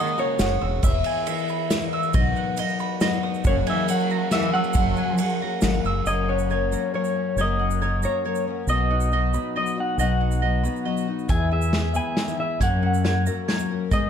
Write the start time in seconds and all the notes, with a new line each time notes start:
Already playing: G#3 A#3 C#4 F#4 D#5 F#5 G#5 E6
0.00 D#3
0.07 shaker
0.18 C#3 G#3 A#3 C#4 F#4 C#5 A#5, shaker
0.39 F#1 G#3 A#3 C#4 F#4 F#5, snare, ride, shaker
0.61 E1 E6
0.83 E1 E3 B3 E4 G#4 E5, kick, ride, shaker
1.04 G#5, ride, shaker
1.27 E3 B3 E4 G#4 E5, ride, shaker
1.38 shaker
1.48 B5, shaker
1.70 E3 B3 E4 G#4 E5, snare, ride, shaker
1.81 shaker
1.93 E6
2.03 shaker
2.13 B1 B2 F#3 B3 D#4 F#4 D#5, kick, ride, shaker
2.36 F#5, shaker
2.57 F#3 B3 D#4 F#4 D#5, ride, shaker
2.68 shaker
2.79 B5, shaker
3.01 F#3 B3 D#4 F#4 D#5, snare, ride, shaker
3.13 shaker
3.23 D#6
3.34 shaker
3.44 F#1 F#2 C#3 F#3 A#3 C#4 G#4 C#5 F#5, kick, ride, shaker
3.67 E3 E5 G#5, ride, shaker
3.88 F#3 A#3 C#4 G#4 F#5, ride, shaker
4.10 A#5, shaker
4.31 E3 F#3 A#3 C#4 G#4 E5 F#5, snare, ride, shaker
4.42 shaker
4.53 F#3 A#3 C#4 G#4 F#5 E6
4.57 F#3
4.64 shaker
4.73 F#1 F#2 C#3 F#3 A#3 G#4 F#5, kick, ride, shaker
4.77 C#4
4.96 G#5, shaker
5.18 F#3 A#3 C#4 F#5, ride, shaker
5.22 G#4
5.29 shaker
5.41 F#3 A#3 C#4 G#4 A#5
5.61 G#1 F#3 A#3 C#4 G#4 F#5, snare, ride, shaker
5.73 shaker
5.84 F#1 E6, shaker
6.06 F#1 F#2 C#3 F#3 A#3 C#4 F#4 A#4 C#5 D#5, shaker
6.29 C#4 C#5 F#5
6.39 shaker
6.50 F#3 A#3 C#4 F#4 A#4 C#5, shaker
6.71 F#3 A#3 A#5, shaker
6.94 F#3 A#3 C#4 F#4 A#4 C#5
7.05 shaker
7.16 C#4
7.36 F#1 F#2 C#3 F#3 A#3 C#4 F#4 A#4 C#5, shaker
7.41 D#5
7.59 C#4 F#5
7.71 shaker
7.82 F#3 A#3 C#4 F#4 A#4 C#5, shaker
8.03 F#3 A#3 C#5 A#5, shaker
8.24 F#3 A#3 C#4 F#4 A#4 C#5
8.35 shaker
8.47 F#3 A#3 C#4 F#4
8.67 B1 B2 F#3 B3 D#4 F#4 D#5, shaker
8.90 D#4 F#5
9.00 shaker
9.12 F#3 B3 D#4 F#4 D#5, shaker
9.34 F#3 B3 B5, shaker
9.56 F#3 B3 D#4 F#4 D#5
9.66 shaker
9.76 B3 D#4 F#4
9.80 F#5
9.98 B1 B2 F#3 B3 D#4 F#4 D#5 F#5, shaker
10.21 D#4 F#5
10.31 shaker
10.42 F#3 B3 D#4 F#4 D#5
10.63 F#3 B3 D#4 F#4 B5, shaker
10.76 shaker
10.85 F#3 B3 D#4 F#4 D#5
10.97 shaker
11.07 B3 D#4 F#4
11.19 shaker
11.29 E2 E3 B3 E4 G#4 E5 G#5, kick, closed hi-hat, shaker
11.51 G#4 E5 G#5
11.62 shaker
11.73 E3 B3 E4 E5, snare, closed hi-hat, shaker
11.77 G#4
11.94 B3 E4 G#5 B5, shaker
12.16 D#3 E3 B3 E4 G#4 E5, snare, closed hi-hat
12.28 shaker
12.39 E3 B3 E4 G#4 E5
12.60 F#2 C#3 F#3 A#3 C#4 A#4 C#5 F#5, kick, closed hi-hat, shaker
12.82 C#4 F#5
12.94 shaker
13.04 F#3 A#3 C#4 A#4 C#5, snare, closed hi-hat, shaker
13.26 F#3 A#3 C#4 A#4 A#5, shaker
13.48 F#3 A#3 C#4 A#4 C#5, snare, closed hi-hat
13.59 shaker
13.70 F#3 A#3 C#4 A#4
13.91 G#2 D#3 G#3 B3 D#4 G#4 D#5, kick, closed hi-hat, shaker